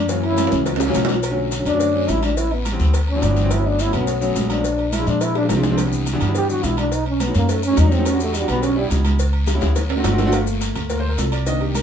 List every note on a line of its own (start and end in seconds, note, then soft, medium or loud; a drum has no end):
0.00 0.47 F#2 loud
0.08 0.24 E3 medium
0.08 0.24 F#3 medium
0.08 0.24 A#3 medium
0.08 0.24 C#4 medium
0.08 cowbell loud
0.08 maracas medium
0.23 0.63 E4 loud
0.23 high conga soft
0.23 low agogo medium
0.29 0.40 E3 medium
0.29 0.40 F#3 medium
0.29 0.41 A#3 medium
0.29 0.41 C#4 medium
0.37 cowbell medium
0.37 high conga loud
0.37 high timbale loud
0.37 low agogo loud
0.37 short guiro medium
0.37 maracas medium
0.44 0.74 E3 medium
0.44 0.75 F#3 medium
0.44 0.75 A#3 medium
0.44 0.75 C#4 medium
0.44 high timbale medium
0.52 0.92 C#2 loud
0.52 cowbell medium
0.52 high conga medium
0.52 short guiro medium
0.52 maracas soft
0.66 cowbell loud
0.66 high conga soft
0.66 low timbale medium
0.66 low agogo medium
0.66 long guiro medium
0.66 maracas medium
0.76 high bongo loud
0.76 high timbale medium
0.80 0.94 E5 medium
0.80 high conga soft
0.80 low agogo loud
0.80 maracas medium
0.86 1.12 E3 medium
0.86 1.13 F#3 medium
0.86 1.13 A#3 medium
0.86 1.13 C#4 loud
0.86 high bongo medium
0.86 low timbale medium
0.94 1.60 B1 loud
0.94 1.21 F#5 medium
0.94 cowbell medium
0.94 high conga medium
0.94 low timbale medium
0.94 low agogo loud
0.94 short guiro medium
0.94 maracas medium
1.05 high conga medium
1.05 low timbale loud
1.05 short guiro medium
1.05 maracas soft
1.09 cowbell medium
1.09 low bongo medium
1.14 low timbale medium
1.23 cowbell loud
1.23 high conga soft
1.23 low agogo loud
1.23 maracas medium
1.30 1.50 D3 medium
1.30 1.50 F#3 medium
1.30 1.50 A3 medium
1.30 1.51 C#4 loud
1.38 high conga soft
1.51 cowbell medium
1.51 high conga medium
1.51 low timbale medium
1.51 low agogo medium
1.51 short guiro medium
1.51 maracas medium
1.58 1.68 D3 medium
1.58 1.69 F#3 medium
1.58 1.69 A3 medium
1.58 1.69 C#4 medium
1.65 2.05 F#2 medium
1.65 2.11 D4 loud
1.65 cowbell medium
1.65 high conga soft
1.65 low conga medium
1.65 low agogo loud
1.65 short guiro medium
1.65 maracas soft
1.73 1.88 D3 medium
1.73 1.88 F#3 medium
1.73 1.88 A3 medium
1.73 1.89 C#4 loud
1.80 cowbell loud
1.80 high conga soft
1.80 long guiro medium
1.80 maracas medium
1.94 2.34 D3 medium
1.94 2.34 F#3 medium
1.94 2.35 A3 medium
1.94 2.35 C#4 medium
1.94 high conga soft
2.08 2.74 A1 loud
2.08 2.23 E4 medium
2.08 cowbell medium
2.08 high conga medium
2.08 low timbale medium
2.08 low agogo medium
2.08 short guiro medium
2.08 maracas medium
2.23 2.39 D4 medium
2.23 cowbell medium
2.23 high conga medium
2.23 low agogo loud
2.23 short guiro medium
2.23 maracas soft
2.37 2.54 E4 medium
2.37 cowbell loud
2.37 high conga soft
2.37 maracas medium
2.51 2.66 B3 medium
2.51 high conga soft
2.51 low agogo medium
2.65 cowbell medium
2.65 high conga medium
2.65 low timbale medium
2.65 low agogo loud
2.65 short guiro medium
2.65 maracas medium
2.72 2.93 E3 medium
2.72 2.94 G3 medium
2.72 2.94 B3 medium
2.72 2.94 C4 medium
2.79 3.19 D2 medium
2.79 cowbell medium
2.79 high conga medium
2.79 short guiro medium
2.79 maracas soft
2.94 cowbell loud
2.94 high conga soft
2.94 low agogo medium
2.94 long guiro medium
2.94 maracas medium
3.08 3.54 D4 medium
3.08 high conga soft
3.08 low agogo medium
3.14 3.25 E3 medium
3.14 3.25 F#3 medium
3.14 3.25 B3 medium
3.14 3.26 C4 medium
3.22 3.88 G1 loud
3.22 cowbell medium
3.22 high conga medium
3.22 low timbale medium
3.22 low agogo medium
3.22 short guiro medium
3.22 maracas medium
3.29 3.39 E3 medium
3.29 3.39 F#3 medium
3.29 3.39 B3 medium
3.29 3.40 C4 medium
3.36 cowbell medium
3.36 high conga medium
3.36 short guiro medium
3.36 maracas soft
3.43 3.50 E3 medium
3.43 3.51 F#3 medium
3.43 3.51 B3 medium
3.43 3.51 C4 loud
3.51 3.68 E4 medium
3.51 cowbell loud
3.51 high conga soft
3.51 low agogo medium
3.51 maracas medium
3.57 3.77 F#3 medium
3.57 3.78 A3 medium
3.57 3.78 B3 medium
3.57 3.78 C#4 medium
3.67 3.82 D4 loud
3.79 3.94 E4 loud
3.79 cowbell medium
3.79 high conga medium
3.79 low timbale medium
3.79 low agogo medium
3.79 short guiro medium
3.79 maracas medium
3.85 3.96 F#3 medium
3.85 3.96 A3 medium
3.85 3.96 B3 medium
3.85 3.97 C#4 medium
3.93 4.33 B1 medium
3.93 4.07 B3 medium
3.93 cowbell medium
3.93 high conga soft
3.93 low conga medium
3.93 low agogo loud
3.93 short guiro medium
3.93 maracas soft
4.00 4.15 F#3 medium
4.00 4.15 A3 medium
4.00 4.16 B3 medium
4.00 4.16 C#4 medium
4.07 cowbell loud
4.07 high conga soft
4.07 long guiro medium
4.07 maracas medium
4.21 4.61 F#3 loud
4.21 4.61 A3 medium
4.21 4.62 B3 medium
4.21 4.62 C#4 loud
4.21 high conga soft
4.21 maracas medium
4.36 5.02 A#1 loud
4.36 cowbell medium
4.36 high conga medium
4.36 low timbale medium
4.36 low agogo medium
4.36 short guiro medium
4.36 maracas medium
4.50 4.95 D4 medium
4.50 cowbell medium
4.50 low agogo loud
4.50 short guiro medium
4.50 maracas soft
4.64 cowbell loud
4.64 high conga soft
4.64 maracas medium
4.78 high conga soft
4.78 low agogo medium
4.92 5.09 E4 loud
4.92 cowbell medium
4.92 high conga medium
4.92 low timbale medium
4.92 low agogo loud
4.92 short guiro medium
4.92 maracas medium
4.99 5.30 F3 medium
4.99 5.30 G#3 medium
4.99 5.30 C4 medium
4.99 5.30 D4 medium
5.07 5.47 A#2 medium
5.07 5.24 D4 loud
5.07 cowbell medium
5.07 high conga medium
5.07 short guiro medium
5.07 maracas soft
5.21 5.36 E4 loud
5.21 cowbell loud
5.21 low agogo medium
5.21 long guiro medium
5.21 maracas medium
5.35 5.45 D4 loud
5.35 high bongo medium
5.35 high conga soft
5.35 low agogo medium
5.41 5.52 F3 medium
5.41 5.52 G#3 medium
5.41 5.53 C4 medium
5.41 5.53 D4 medium
5.49 6.15 C2 loud
5.49 cowbell medium
5.49 low bongo medium
5.49 high conga medium
5.49 low timbale medium
5.49 low agogo medium
5.49 short guiro medium
5.49 maracas medium
5.56 5.66 F3 medium
5.56 5.67 G#3 medium
5.56 5.67 C4 medium
5.56 5.67 D4 loud
5.63 cowbell medium
5.63 low bongo loud
5.63 high conga medium
5.63 short guiro medium
5.63 maracas soft
5.70 5.78 F3 medium
5.70 5.78 G#3 loud
5.70 5.78 C4 loud
5.70 5.79 D4 loud
5.77 cowbell loud
5.77 high conga soft
5.77 low agogo loud
5.77 long guiro medium
5.77 maracas medium
5.85 6.05 E3 medium
5.85 6.05 G3 medium
5.85 6.06 B3 medium
5.85 6.06 D4 medium
5.92 high conga soft
5.92 maracas medium
6.06 cowbell medium
6.06 high conga medium
6.06 low timbale medium
6.06 low agogo medium
6.06 short guiro medium
6.06 maracas medium
6.13 6.23 E3 loud
6.13 6.24 G3 medium
6.13 6.24 B3 medium
6.13 6.24 D4 loud
6.20 6.61 G2 medium
6.20 cowbell medium
6.20 high conga soft
6.20 low conga medium
6.20 low agogo loud
6.20 short guiro medium
6.20 maracas soft
6.28 6.43 E3 medium
6.28 6.43 G3 medium
6.28 6.43 B3 medium
6.28 6.44 D4 loud
6.35 6.49 G4 loud
6.35 cowbell loud
6.35 high conga soft
6.35 long guiro medium
6.35 maracas medium
6.49 6.89 E3 medium
6.49 6.89 G3 medium
6.49 6.89 B3 medium
6.49 6.89 D4 medium
6.49 6.66 F#4 medium
6.49 high conga soft
6.49 maracas medium
6.63 7.29 B1 loud
6.63 6.78 E4 medium
6.63 cowbell medium
6.63 high conga medium
6.63 low timbale medium
6.63 low agogo medium
6.63 short guiro medium
6.63 maracas medium
6.77 6.95 D4 loud
6.77 cowbell medium
6.77 low agogo loud
6.77 short guiro medium
6.77 maracas soft
6.92 7.07 D#4 medium
6.92 cowbell medium
6.92 long guiro medium
6.92 maracas medium
7.06 7.23 C#4 medium
7.06 high conga soft
7.06 low agogo medium
7.20 7.35 B3 medium
7.20 cowbell medium
7.20 high conga medium
7.20 low timbale medium
7.20 low agogo loud
7.20 short guiro medium
7.20 maracas medium
7.27 7.57 F#3 medium
7.27 7.57 A3 medium
7.27 7.58 C#4 medium
7.27 7.58 D#4 medium
7.35 7.74 F#2 medium
7.35 7.52 A#3 medium
7.35 cowbell medium
7.35 high conga loud
7.35 short guiro medium
7.35 maracas soft
7.49 7.64 A3 medium
7.49 cowbell loud
7.49 high conga soft
7.49 low agogo medium
7.49 long guiro medium
7.49 maracas medium
7.63 7.80 C#4 loud
7.63 high conga soft
7.63 low agogo medium
7.63 maracas medium
7.70 7.80 F#3 medium
7.70 7.80 A3 medium
7.70 7.80 C#4 medium
7.70 7.81 D#4 medium
7.77 8.43 E2 loud
7.77 7.94 D#4 loud
7.77 cowbell medium
7.77 high conga loud
7.77 low timbale medium
7.77 low agogo loud
7.77 short guiro medium
7.77 maracas medium
7.84 7.94 F#3 medium
7.84 7.94 A3 medium
7.84 7.95 C#4 medium
7.84 7.95 D#4 medium
7.91 8.08 C4 medium
7.91 cowbell medium
7.91 high conga medium
7.91 short guiro medium
7.91 maracas soft
7.98 8.05 F#3 medium
7.98 8.06 A3 medium
7.98 8.06 C#4 medium
7.98 8.06 D#4 medium
8.05 8.20 C#4 medium
8.05 cowbell loud
8.05 low agogo loud
8.05 long guiro medium
8.05 maracas medium
8.12 8.32 G3 medium
8.12 8.32 B3 medium
8.12 8.33 D4 medium
8.12 8.33 F#4 medium
8.20 8.38 A3 medium
8.20 high conga soft
8.20 maracas medium
8.34 8.49 G3 medium
8.34 cowbell medium
8.34 high conga medium
8.34 low timbale medium
8.34 low agogo medium
8.34 short guiro medium
8.34 maracas medium
8.40 8.51 G3 medium
8.40 8.51 B3 medium
8.40 8.51 D4 medium
8.40 8.51 F#4 medium
8.48 8.88 B1 medium
8.48 8.66 B3 loud
8.48 cowbell medium
8.48 high conga soft
8.48 low conga medium
8.48 low agogo loud
8.48 short guiro medium
8.48 maracas soft
8.55 8.70 G3 medium
8.55 8.70 B3 medium
8.55 8.70 D4 medium
8.55 8.71 F#4 medium
8.62 8.77 C#4 medium
8.62 cowbell loud
8.62 high conga soft
8.62 long guiro medium
8.62 maracas medium
8.76 9.16 G3 medium
8.76 8.86 G3 medium
8.76 9.16 B3 medium
8.76 9.16 D4 medium
8.76 9.17 E4 medium
8.76 high conga soft
8.90 9.56 C#2 loud
8.90 cowbell medium
8.90 high conga medium
8.90 low timbale medium
8.90 low agogo medium
8.90 short guiro medium
8.90 maracas medium
9.04 cowbell medium
9.04 high conga medium
9.04 low agogo loud
9.04 short guiro medium
9.04 maracas soft
9.19 cowbell loud
9.19 long guiro medium
9.19 maracas medium
9.33 high conga soft
9.33 low agogo medium
9.47 cowbell medium
9.47 high bongo medium
9.47 high conga medium
9.47 low timbale medium
9.47 low agogo loud
9.47 short guiro medium
9.47 maracas medium
9.54 9.76 G3 medium
9.54 9.76 B3 medium
9.54 9.76 C#4 medium
9.54 9.76 E4 medium
9.61 10.01 D2 loud
9.61 cowbell medium
9.61 high bongo loud
9.61 high conga medium
9.61 short guiro medium
9.61 maracas soft
9.75 cowbell loud
9.75 low bongo medium
9.75 high conga soft
9.75 low agogo medium
9.75 long guiro medium
9.75 maracas medium
9.90 high conga soft
9.90 high timbale loud
9.90 low agogo medium
9.96 10.07 A3 loud
9.96 10.07 C4 medium
9.96 10.07 D4 medium
9.96 10.07 F#4 loud
10.04 10.70 G1 loud
10.04 cowbell medium
10.04 low bongo medium
10.04 high conga loud
10.04 low timbale loud
10.04 low agogo loud
10.04 short guiro medium
10.04 maracas medium
10.11 10.21 A3 medium
10.11 10.21 C4 medium
10.11 10.22 D4 medium
10.11 10.22 F#4 loud
10.18 cowbell medium
10.18 low bongo loud
10.18 high conga medium
10.18 low timbale medium
10.18 short guiro medium
10.18 maracas soft
10.25 10.31 A3 loud
10.25 10.33 C4 loud
10.25 10.33 D4 loud
10.25 10.33 F#4 loud
10.32 10.88 A3 medium
10.32 10.88 A#3 soft
10.32 10.89 F4 medium
10.32 cowbell loud
10.32 high conga soft
10.32 low agogo loud
10.32 long guiro medium
10.32 maracas medium
10.47 maracas medium
10.61 cowbell medium
10.61 high conga medium
10.61 low timbale medium
10.61 low agogo medium
10.61 short guiro medium
10.61 maracas medium
10.75 11.15 D2 loud
10.75 cowbell medium
10.75 high conga soft
10.75 low conga medium
10.75 low agogo medium
10.75 short guiro medium
10.75 maracas soft
10.89 11.02 A3 soft
10.89 11.03 A#3 soft
10.89 11.03 F4 soft
10.89 10.99 A#4 medium
10.89 cowbell loud
10.89 high conga soft
10.89 long guiro medium
10.89 maracas medium
11.00 11.09 C5 medium
11.04 high conga soft
11.09 11.18 A#4 medium
11.18 11.82 C2 loud
11.18 11.32 A4 medium
11.18 cowbell medium
11.18 high conga medium
11.18 low timbale medium
11.18 low agogo medium
11.18 short guiro medium
11.18 maracas medium
11.32 11.46 D5 medium
11.32 cowbell medium
11.32 low agogo loud
11.32 short guiro medium
11.32 maracas soft
11.46 11.82 D#3 medium
11.46 11.82 A#3 medium
11.46 11.82 D4 medium
11.46 11.60 D#5 loud
11.46 cowbell loud
11.46 high conga soft
11.46 long guiro medium
11.46 maracas medium
11.61 11.75 G4 medium
11.61 high conga soft
11.61 low agogo medium
11.75 11.82 A#4 medium
11.75 cowbell medium
11.75 high conga medium
11.75 low timbale medium
11.75 low agogo loud
11.75 short guiro medium
11.75 maracas medium